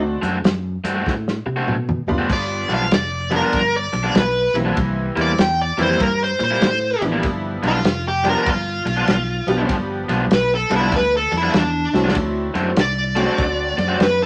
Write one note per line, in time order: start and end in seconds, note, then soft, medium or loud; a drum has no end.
0.00 0.15 D2 medium
0.00 0.18 A3 medium
0.00 0.18 C4 medium
0.00 0.18 D4 medium
0.00 0.19 F#4 medium
0.22 0.40 F#2 medium
0.22 0.36 D3 medium
0.22 0.37 A3 medium
0.22 0.37 C4 medium
0.22 0.37 F#4 medium
0.22 snare soft
0.22 closed hi-hat medium
0.44 0.76 F#2 medium
0.44 snare loud
0.44 closed hi-hat medium
0.84 1.01 G2 medium
0.84 0.95 D3 medium
0.84 0.94 A3 medium
0.84 0.94 C4 medium
0.84 0.94 F#4 medium
0.84 snare soft
0.84 closed hi-hat medium
0.95 1.13 D3 medium
0.95 1.12 A3 medium
0.95 1.12 C4 medium
0.95 1.12 F#4 medium
1.06 1.38 A2 medium
1.06 kick medium
1.06 snare medium
1.28 snare medium
1.46 1.63 C3 medium
1.46 muted overdriven electric guitar stroke soft
1.56 1.74 D3 medium
1.56 1.74 A3 medium
1.56 1.74 C4 medium
1.56 1.74 F#4 medium
1.67 2.00 B2 medium
1.67 mid tom medium
1.89 mid tom medium
2.07 2.25 F#1 medium
2.07 2.87 G3 medium
2.07 2.87 B3 medium
2.07 2.87 D4 medium
2.07 2.88 F4 medium
2.07 floor tom medium
2.18 2.30 D3 medium
2.18 2.30 A3 medium
2.18 2.30 C4 medium
2.18 2.29 F#4 medium
2.29 2.62 G1 medium
2.29 2.71 D5 medium
2.29 kick loud
2.29 snare soft
2.29 crash medium
2.69 2.87 B1 medium
2.69 2.83 G2 medium
2.69 2.84 F3 medium
2.69 2.84 B3 medium
2.69 2.84 D4 medium
2.69 snare soft
2.69 ride soft
2.74 2.93 F5 medium
2.91 3.40 F1 medium
2.91 3.33 D5 medium
2.91 snare loud
2.91 ride medium
3.30 3.42 G2 medium
3.30 3.50 F3 medium
3.30 3.41 F3 medium
3.30 3.50 G3 medium
3.30 3.51 B3 medium
3.30 3.41 B3 medium
3.30 3.51 D4 medium
3.30 3.41 D4 medium
3.30 3.51 F4 medium
3.30 snare soft
3.30 ride medium
3.36 3.74 A#4 medium
3.42 3.60 G2 medium
3.42 3.59 F3 medium
3.42 3.59 B3 medium
3.42 3.59 D4 medium
3.53 3.85 G1 medium
3.53 kick medium
3.53 snare soft
3.53 ride medium
3.76 4.15 D5 medium
3.93 4.10 B1 medium
3.93 muted overdriven electric guitar stroke soft
3.93 snare soft
3.93 ride medium
4.03 4.21 G2 medium
4.03 4.21 F3 medium
4.03 4.21 B3 medium
4.03 4.20 D4 medium
4.14 4.46 B1 medium
4.14 4.55 B4 medium
4.14 snare loud
4.14 ride medium
4.54 4.72 B1 medium
4.54 5.34 E3 medium
4.54 5.34 G3 medium
4.54 5.34 A#3 medium
4.54 5.34 C4 medium
4.54 5.34 E4 medium
4.54 snare soft
4.54 ride medium
4.65 4.77 G2 medium
4.65 4.77 F3 medium
4.65 4.77 B3 medium
4.65 4.76 D4 medium
4.77 5.09 C2 medium
4.77 kick loud
4.77 snare soft
4.77 ride medium
5.16 5.33 E2 medium
5.16 5.30 C3 medium
5.16 5.30 G3 medium
5.16 5.30 A#3 medium
5.16 5.31 E4 medium
5.16 snare soft
5.16 ride medium
5.21 5.39 D5 medium
5.38 5.70 E2 medium
5.38 5.59 G5 medium
5.38 snare medium
5.38 ride medium
5.62 5.80 D5 medium
5.78 5.95 F2 medium
5.78 5.88 C3 medium
5.78 5.98 E3 medium
5.78 5.88 G3 medium
5.78 5.98 G3 medium
5.78 5.88 A#3 medium
5.78 5.98 A#3 medium
5.78 5.98 C4 medium
5.78 5.87 E4 medium
5.78 5.98 E4 medium
5.78 snare soft
5.78 ride medium
5.82 6.01 C5 medium
5.89 6.06 C3 medium
5.89 6.06 G3 medium
5.89 6.06 A#3 medium
5.89 6.06 E4 medium
6.00 6.32 G2 medium
6.00 6.21 A#4 medium
6.00 kick medium
6.00 snare soft
6.00 ride medium
6.24 6.42 C5 medium
6.39 6.57 A#2 medium
6.39 muted overdriven electric guitar stroke soft
6.39 snare soft
6.39 ride medium
6.44 7.02 C5 loud
6.51 6.68 C3 medium
6.51 6.68 G3 medium
6.51 6.68 A#3 medium
6.51 6.67 E4 medium
6.61 6.93 A2 medium
6.61 snare medium
6.61 ride medium
7.01 7.19 A1 medium
7.01 7.80 F3 medium
7.01 7.80 G3 medium
7.01 7.80 B3 medium
7.01 7.81 D4 medium
7.01 7.81 E4 medium
7.01 snare soft
7.01 ride medium
7.12 7.23 C3 medium
7.12 7.23 G3 medium
7.12 7.23 A#3 medium
7.12 7.23 E4 medium
7.23 7.55 G1 medium
7.23 kick medium
7.23 snare soft
7.23 ride medium
7.62 7.80 B1 medium
7.62 7.77 G2 medium
7.62 7.77 F3 medium
7.62 7.77 B3 medium
7.62 7.78 D4 loud
7.62 snare soft
7.62 ride soft
7.68 8.06 F4 medium
7.84 8.33 F1 medium
7.84 snare loud
7.84 ride medium
8.08 8.27 G4 medium
8.24 8.34 G2 medium
8.24 8.34 F3 medium
8.24 8.44 F3 medium
8.24 8.44 G3 medium
8.24 8.34 B3 medium
8.24 8.44 B3 medium
8.24 8.34 D4 medium
8.24 8.45 D4 medium
8.24 8.45 F4 medium
8.24 snare soft
8.24 ride medium
8.29 8.48 A#4 medium
8.35 8.52 G2 medium
8.35 8.52 F3 medium
8.35 8.52 B3 medium
8.35 8.52 D4 medium
8.46 8.78 G1 medium
8.46 9.67 F4 medium
8.46 kick loud
8.46 snare soft
8.46 ride medium
8.85 9.03 B1 medium
8.85 muted overdriven electric guitar stroke soft
8.85 snare soft
8.85 ride medium
8.97 9.14 G2 medium
8.97 9.14 F3 medium
8.97 9.14 B3 medium
8.97 9.14 D4 medium
9.07 9.39 B1 medium
9.07 snare medium
9.07 ride medium
9.47 9.64 B1 medium
9.47 10.26 F3 medium
9.47 10.27 G3 medium
9.47 10.27 B3 medium
9.47 10.27 D4 medium
9.47 10.27 G4 medium
9.47 snare soft
9.47 ride medium
9.58 9.76 G2 medium
9.58 9.75 F3 medium
9.58 9.75 B3 medium
9.58 9.75 D4 medium
9.69 10.01 G1 medium
9.69 kick loud
9.69 snare soft
9.69 ride medium
10.09 10.26 B1 medium
10.09 10.23 G2 medium
10.09 10.23 F3 medium
10.09 10.24 B3 medium
10.09 10.24 D4 medium
10.09 snare soft
10.09 ride medium
10.30 10.63 B1 medium
10.30 10.52 B4 medium
10.30 snare loud
10.30 ride medium
10.55 10.73 A4 medium
10.70 10.88 C2 medium
10.70 10.81 G2 medium
10.70 10.90 F3 medium
10.70 10.80 F3 medium
10.70 10.90 G3 medium
10.70 10.80 B3 medium
10.70 10.90 B3 medium
10.70 10.80 D4 medium
10.70 10.91 D4 medium
10.70 10.91 F4 medium
10.70 snare soft
10.70 ride medium
10.76 10.94 E4 medium
10.81 10.99 G2 medium
10.81 10.98 F3 medium
10.81 10.98 B3 medium
10.81 10.98 D4 medium
10.92 11.24 D2 medium
10.92 11.14 B4 medium
10.92 kick medium
10.92 snare soft
10.92 ride medium
11.17 11.35 A4 medium
11.32 11.49 F2 medium
11.32 muted overdriven electric guitar stroke soft
11.32 snare soft
11.32 ride medium
11.37 11.55 E4 medium
11.42 11.60 G2 medium
11.42 11.60 F3 medium
11.42 11.60 B3 medium
11.42 11.59 D4 medium
11.53 11.86 E2 medium
11.53 12.15 D4 medium
11.53 snare medium
11.53 ride medium
11.93 12.11 C2 medium
11.93 12.72 F#3 medium
11.93 12.73 A3 medium
11.93 12.73 C4 medium
11.93 12.73 D4 medium
11.93 12.73 E4 medium
11.93 snare medium
12.04 12.16 G2 medium
12.04 12.16 F3 medium
12.04 12.15 B3 medium
12.04 12.15 D4 medium
12.08 snare medium
12.15 12.47 D2 medium
12.15 kick loud
12.15 snare soft
12.15 ride medium
12.54 12.72 F#2 medium
12.54 12.69 D3 medium
12.54 12.69 A3 medium
12.54 12.69 C4 medium
12.54 12.70 F#4 medium
12.54 snare soft
12.54 ride medium
12.76 13.26 C2 medium
12.76 13.98 D5 loud
12.76 snare loud
12.76 ride medium
13.15 13.26 D3 medium
13.15 13.95 F#3 medium
13.15 13.26 A3 medium
13.15 13.95 A3 medium
13.15 13.25 C4 medium
13.15 13.96 C4 medium
13.15 13.96 D4 medium
13.15 13.25 F#4 medium
13.15 13.96 F#4 medium
13.15 snare soft
13.15 ride medium
13.26 13.44 D3 medium
13.26 13.44 A3 medium
13.26 13.44 C4 medium
13.26 13.44 F#4 loud
13.38 13.70 D2 medium
13.38 kick loud
13.38 snare soft
13.38 ride medium
13.78 13.95 F#2 medium
13.78 muted overdriven electric guitar stroke soft
13.78 snare soft
13.78 ride medium
13.88 14.06 D3 medium
13.88 14.06 A3 medium
13.88 14.06 C4 medium
13.88 14.06 F#4 medium
14.00 14.26 F#2 medium
14.00 14.22 B4 medium
14.00 snare medium
14.00 ride medium